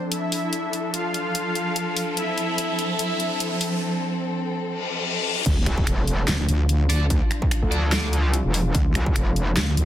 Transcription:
Already playing: F3 D4 A4 D5, riser
0.12 E4 E5, closed hi-hat
0.32 open hi-hat
0.53 closed hi-hat
0.73 closed hi-hat
0.94 F4 F5, closed hi-hat
1.14 closed hi-hat
1.35 closed hi-hat
1.55 closed hi-hat
1.76 closed hi-hat
1.97 open hi-hat
2.17 C4 E4 E5, closed hi-hat
2.38 closed hi-hat
2.58 closed hi-hat
2.79 closed hi-hat
2.99 E4 E5, closed hi-hat
3.20 closed hi-hat
3.40 closed hi-hat
3.61 open hi-hat
4.64 reverse cymbal
5.46 D2 F3 D4 F4, kick, closed hi-hat, crash, impact
5.66 C2, finger snap, closed hi-hat
5.78 kick
5.87 F1, finger snap, closed hi-hat
6.07 closed hi-hat
6.28 D2, snare, clap, closed hi-hat
6.49 D2, closed hi-hat
6.69 closed hi-hat
6.89 D2 D4 A4 D5, open hi-hat
7.10 kick, closed hi-hat
7.31 finger snap, closed hi-hat
7.42 kick
7.51 finger snap, closed hi-hat
7.63 D2
7.72 D4 A4 D5, closed hi-hat
7.92 D4 A4 D5, snare, clap, closed hi-hat
8.13 closed hi-hat
8.20 C#2
8.34 closed hi-hat
8.45 E1
8.54 open hi-hat
8.75 D2, kick, closed hi-hat
8.95 C2, finger snap, closed hi-hat
9.06 kick
9.16 F1, finger snap, closed hi-hat
9.36 closed hi-hat
9.57 D2, snare, clap, closed hi-hat
9.77 D2, closed hi-hat

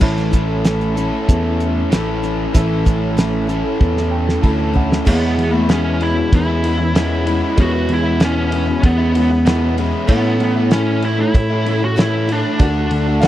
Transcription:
0.01 A1 A2 E3 A3 C#4 E4 A4 C#5, kick, crash
0.18 snare, closed hi-hat
0.31 A3 C#4 E4, kick, closed hi-hat
0.64 E3 A3 C#4 E4, snare, closed hi-hat
0.81 closed hi-hat
0.95 A2 E3 A3 C#4 E4 A4, closed hi-hat
1.29 E2, kick, closed hi-hat
1.60 closed hi-hat
1.90 A1 A2 E3 A3 C#4 A4, snare, closed hi-hat
1.94 E4
2.23 A3 C#4 E4, closed hi-hat
2.53 A1 A2 E3 A3 C#4 E4 A4 C#5, kick, closed hi-hat
2.85 A3 C#4 E4, kick, closed hi-hat
3.17 E3 A3 C#4 E4, snare, closed hi-hat
3.47 E3 A3 C#4 E4 A4, closed hi-hat
3.51 A2
3.81 E2, kick
3.97 snare
4.11 G5
4.29 snare
4.42 D2 A2 E3 A3 C#4 E4 A4 A5, kick
4.73 A3 C#4 E4 F#5, floor tom
4.92 snare
5.04 E2 B2 E3 G#3 B3 C#4 E4 G#4 C#5, kick, crash
5.38 E2, ride
5.52 E3 G#3 B3 E4
5.57 A3
5.68 E2 B2 E3 G#3 B3 C#4 E4, snare, ride
6.00 E3 G#3 B3 E4, ride
6.16 muted overdriven electric guitar stroke
6.32 E2 E3 G#3 C#4 E4, kick, ride
6.45 E3 G#3 B3 E4
6.61 E3 G#3 B3 E4, ride
6.66 E3 C#4
6.78 muted overdriven electric guitar stroke
6.94 E2 B2 E3 G#3 B3 C#4 E4, snare, ride
7.24 E3 G#3 B3 C#4 E4, ride
7.29 E3
7.56 E2 B2 E3 G#3 B3 C#4 E4 G#4 C#5, kick, ride
7.62 F#4
7.89 E2, ride
7.93 E4
8.03 E3 G#3 B3 E4
8.19 E2 B2 E3 G#3 B3 C#4 E4, snare, ride
8.24 C#4
8.51 E3 G#3 B3 E4, ride
8.67 muted overdriven electric guitar stroke
8.83 E2 E3 G#3 B3 C#4 E4, kick, ride
8.98 E3 G#3 B3 E4
9.13 E3 G#3 B3 C#4 E4, ride
9.18 E3
9.30 muted overdriven electric guitar stroke
9.45 E2 B2 E3 G#3 B3 C#4 E4, snare, ride
9.77 E3 G#3 B3 C#4 E4, ride
10.07 A2 E3 A3 B3 C#4 E4 A4 C#5, kick, crash
10.40 A2, ride
10.56 A3 C#4 E4
10.71 A2 E3 A3 C#4 E4, snare, ride
11.02 E3 A3 C#4 E4, ride
11.19 E4, muted overdriven electric guitar stroke
11.34 A2 E3 A3 C#4 E4, kick, ride
11.50 A3 C#4 E4
11.66 E3 A3 C#4 E4, ride
11.83 F#4, muted overdriven electric guitar stroke
11.98 A2 E3 A3 C#4 E4, snare, ride
12.27 E3 A3 C#4 E4, ride
12.32 D4 E4
12.58 D2 D3 A3 D4 F#4 A4 D5, kick, ride
12.91 D2, ride
13.07 A3 D4 F#4
13.20 D3 F#4 F5, snare, ride
13.24 A3 D4 F#5

